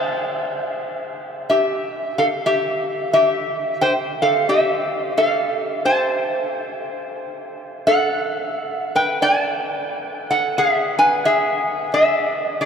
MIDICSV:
0, 0, Header, 1, 2, 480
1, 0, Start_track
1, 0, Key_signature, 0, "minor"
1, 0, Tempo, 676437
1, 1730, Time_signature, 4, 2, 24, 8
1, 8979, End_track
2, 0, Start_track
2, 0, Title_t, "Resonator guitar played with a steel bar"
2, 0, Program_c, 0, 25
2, 0, Note_on_c, 0, 72, 68
2, 0, Note_on_c, 0, 81, 101
2, 1061, Note_on_c, 0, 76, 75
2, 1068, Note_on_c, 0, 67, 59
2, 1223, Note_off_c, 0, 72, 0
2, 1224, Note_off_c, 0, 81, 0
2, 1515, Note_off_c, 0, 67, 0
2, 1546, Note_off_c, 0, 76, 0
2, 1549, Note_on_c, 0, 77, 73
2, 1554, Note_on_c, 0, 69, 57
2, 1599, Note_off_c, 0, 77, 0
2, 1603, Note_off_c, 0, 69, 0
2, 1745, Note_on_c, 0, 76, 84
2, 1749, Note_on_c, 0, 67, 70
2, 2192, Note_off_c, 0, 67, 0
2, 2216, Note_off_c, 0, 76, 0
2, 2224, Note_on_c, 0, 76, 81
2, 2228, Note_on_c, 0, 67, 64
2, 2669, Note_off_c, 0, 76, 0
2, 2672, Note_off_c, 0, 67, 0
2, 2707, Note_on_c, 0, 79, 90
2, 2712, Note_on_c, 0, 72, 71
2, 2782, Note_off_c, 0, 79, 0
2, 2787, Note_off_c, 0, 72, 0
2, 2995, Note_on_c, 0, 77, 82
2, 2999, Note_on_c, 0, 69, 61
2, 3169, Note_off_c, 0, 69, 0
2, 3185, Note_off_c, 0, 77, 0
2, 3185, Note_on_c, 0, 67, 63
2, 3188, Note_on_c, 0, 76, 89
2, 3630, Note_off_c, 0, 67, 0
2, 3672, Note_off_c, 0, 76, 0
2, 3672, Note_on_c, 0, 69, 69
2, 3675, Note_on_c, 0, 77, 95
2, 4115, Note_off_c, 0, 69, 0
2, 4153, Note_on_c, 0, 72, 73
2, 4156, Note_off_c, 0, 77, 0
2, 4156, Note_on_c, 0, 81, 100
2, 5074, Note_off_c, 0, 72, 0
2, 5074, Note_off_c, 0, 81, 0
2, 5583, Note_on_c, 0, 78, 104
2, 5591, Note_on_c, 0, 69, 77
2, 6029, Note_off_c, 0, 78, 0
2, 6032, Note_off_c, 0, 69, 0
2, 6354, Note_on_c, 0, 71, 68
2, 6357, Note_on_c, 0, 79, 80
2, 6526, Note_off_c, 0, 71, 0
2, 6543, Note_off_c, 0, 79, 0
2, 6543, Note_on_c, 0, 74, 77
2, 6545, Note_on_c, 0, 80, 106
2, 6666, Note_off_c, 0, 80, 0
2, 6666, Note_on_c, 0, 81, 106
2, 7276, Note_off_c, 0, 74, 0
2, 7313, Note_on_c, 0, 78, 84
2, 7319, Note_on_c, 0, 69, 65
2, 7328, Note_off_c, 0, 81, 0
2, 7488, Note_off_c, 0, 69, 0
2, 7503, Note_off_c, 0, 78, 0
2, 7507, Note_on_c, 0, 76, 90
2, 7513, Note_on_c, 0, 68, 67
2, 7770, Note_off_c, 0, 68, 0
2, 7795, Note_off_c, 0, 76, 0
2, 7796, Note_on_c, 0, 80, 93
2, 7799, Note_on_c, 0, 71, 71
2, 7968, Note_off_c, 0, 71, 0
2, 7984, Note_off_c, 0, 80, 0
2, 7985, Note_on_c, 0, 76, 83
2, 7990, Note_on_c, 0, 68, 63
2, 8431, Note_off_c, 0, 68, 0
2, 8462, Note_off_c, 0, 76, 0
2, 8471, Note_on_c, 0, 76, 87
2, 8474, Note_on_c, 0, 68, 63
2, 8913, Note_off_c, 0, 68, 0
2, 8938, Note_off_c, 0, 76, 0
2, 8947, Note_on_c, 0, 76, 74
2, 8952, Note_on_c, 0, 68, 58
2, 8979, Note_off_c, 0, 68, 0
2, 8979, Note_off_c, 0, 76, 0
2, 8979, End_track
0, 0, End_of_file